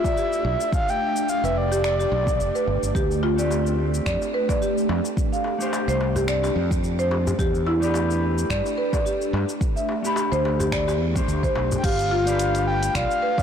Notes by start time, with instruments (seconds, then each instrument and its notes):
Already playing: ambient pad A3 D4 G4 D5, soft synth lead E5
0.04 marimba D5, kick, shaker
0.17 marimba G4, shaker
0.33 shaker
0.45 fretless electric bass B1
0.61 shaker
0.73 soft synth lead F5, kick, shaker
0.88 marimba F5, soft synth lead G5, shaker
1.16 shaker
1.29 soft synth lead F5, shaker
1.44 fretless electric bass F1, marimba B4, soft synth lead E5, shaker
1.57 soft synth lead D5
1.72 marimba G4, shaker
1.84 marimba D5, finger snap, shaker
2.00 marimba G4, shaker
2.12 fretless electric bass B1
2.27 kick, shaker
2.40 fretless electric bass F1, shaker
2.55 marimba B4, shaker
2.67 fretless electric bass G1
2.83 fretless electric bass G1, shaker
2.95 fretless electric bass D2, marimba G4, kick, shaker
3.11 shaker
3.23 marimba F4, darbuka ka
3.36 clean electric guitar A3 C4 D4 G4, marimba D5, shaker
3.51 darbuka tek, shaker
3.67 shaker
3.94 shaker
4.06 fretless electric bass F2, marimba D5, finger snap, kick, shaker
4.22 darbuka ka, shaker
4.34 marimba B4
4.47 ambient pad C4, marimba D5, kick, darbuka tek, shaker
4.62 marimba G4, shaker
4.78 shaker
4.89 fretless electric bass F2, darbuka tek
5.04 darbuka ka, shaker
5.17 kick, shaker
5.33 marimba F5, shaker
5.44 darbuka ka
5.58 clean electric guitar A3 D4 G4 C5, shaker
5.73 darbuka tek, shaker
5.88 fretless electric bass C2, marimba C5, shaker
6.01 darbuka tek
6.16 marimba G4, darbuka dum, shaker
6.28 marimba D5, finger snap, shaker
6.43 marimba G4, darbuka ka, darbuka tek, shaker
6.56 fretless electric bass F2
6.71 kick, shaker
6.84 shaker
6.99 marimba C5, shaker
7.11 darbuka ka, darbuka tek
7.27 darbuka dum, shaker
7.39 fretless electric bass E2, marimba G4, kick, shaker
7.55 shaker
7.67 marimba E4, darbuka ka
7.80 clean electric guitar A3 D4 G4 B4, marimba D5, shaker
7.94 darbuka tek, shaker
8.11 shaker
8.38 shaker
8.50 fretless electric bass G2, marimba D5, finger snap, kick, shaker
8.66 darbuka ka, shaker
8.78 marimba B4
8.93 marimba D5, kick, darbuka tek, shaker
9.06 marimba G4, shaker
9.22 shaker
9.33 fretless electric bass G2, darbuka tek
9.49 darbuka ka, shaker
9.61 kick, shaker
9.76 marimba E5, shaker
9.89 darbuka ka
10.02 clean electric guitar A3 D4 G4, shaker
10.07 clean electric guitar B5
10.16 darbuka tek, shaker
10.32 fretless electric bass D2, marimba C5, shaker
10.45 darbuka tek
10.60 marimba G4, darbuka dum, shaker
10.72 marimba D5, finger snap, kick, shaker
10.88 marimba G4, darbuka ka, darbuka tek, shaker
11.00 fretless electric bass E2
11.14 clean electric guitar A3 D4 G4 C5, kick, darbuka ka, shaker
11.28 fretless electric bass D2, shaker
11.43 marimba C5, kick, shaker
11.55 fretless electric bass B1, darbuka ka, darbuka tek
11.72 darbuka dum, shaker
11.77 soft synth lead G5
11.84 fretless electric bass G1, ambient pad A3, marimba G4, soft synth lead F5, kick, closed hi-hat, crash, shaker
11.99 closed hi-hat, shaker
12.11 marimba F4
12.25 clean electric guitar A3 D4 G4 B4, marimba D5, closed hi-hat, shaker
12.39 closed hi-hat, shaker
12.55 closed hi-hat, shaker
12.67 soft synth lead G5
12.83 closed hi-hat, shaker
12.95 fretless electric bass B1, marimba D5, soft synth lead F5, finger snap, kick, closed hi-hat, shaker
13.11 shaker
13.22 marimba B4
13.38 marimba D5, kick, shaker